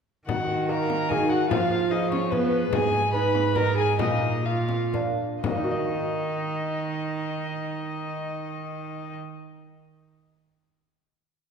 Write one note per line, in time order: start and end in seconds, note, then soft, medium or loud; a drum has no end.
0.27 1.46 D#3 soft
0.27 1.46 D#3 medium
0.27 0.71 F#4 medium
0.27 0.66 F#5 medium
0.27 frame drum medium
0.69 1.06 A#3 soft
0.69 1.06 D#4 soft
0.69 1.06 F#4 soft
0.69 1.13 A#4 medium
0.69 1.11 A#5 medium
0.90 frame drum soft
1.09 1.47 A#3 soft
1.09 1.47 D#4 soft
1.09 1.47 F#4 soft
1.09 1.31 G#4 medium
1.09 1.31 G#5 medium
1.09 frame drum soft
1.30 1.50 F#4 medium
1.30 1.48 F#5 medium
1.49 2.69 F3 soft
1.49 2.70 F3 medium
1.49 1.93 F4 medium
1.49 1.93 F5 medium
1.49 frame drum medium
1.91 2.28 B3 soft
1.91 2.11 D#4 medium
1.91 2.28 G#4 medium
1.91 2.10 D#5 medium
2.10 2.20 C#4 medium
2.10 2.32 C#5 medium
2.10 frame drum soft
2.31 2.69 B3 soft
2.31 2.72 B3 medium
2.31 2.69 G#4 medium
2.31 2.74 B4 medium
2.31 frame drum soft
2.72 3.96 G#2 soft
2.72 4.00 G#2 medium
2.72 3.13 G#4 medium
2.72 3.12 G#5 medium
2.72 frame drum medium
3.13 3.52 B3 soft
3.13 3.52 D#4 soft
3.13 3.52 G#4 soft
3.13 3.57 B4 medium
3.13 3.58 B5 medium
3.35 frame drum soft
3.55 3.96 B3 soft
3.55 3.96 D#4 soft
3.55 3.96 G#4 soft
3.55 3.76 A#4 medium
3.55 3.77 A#5 medium
3.55 frame drum soft
3.77 3.99 G#4 medium
3.77 3.99 G#5 medium
3.99 5.18 A#2 medium
3.99 5.15 A#2 soft
3.99 4.42 A#3 soft
3.99 4.45 D#4 medium
3.99 4.42 D#4 soft
3.99 4.42 F4 soft
3.99 4.47 D#5 medium
3.99 frame drum medium
4.46 4.93 F4 medium
4.46 4.94 F5 medium
4.69 frame drum soft
4.93 5.40 A#3 soft
4.93 5.40 D4 soft
4.93 5.40 F4 soft
4.93 frame drum soft
5.43 9.14 D#3 soft
5.43 9.14 D#3 medium
5.43 9.14 D#4 medium
5.43 9.14 D#5 medium
5.43 frame drum medium
5.50 9.21 A#3 soft
5.57 9.28 D#4 soft
5.64 9.35 F#4 soft
5.71 9.42 D#5 soft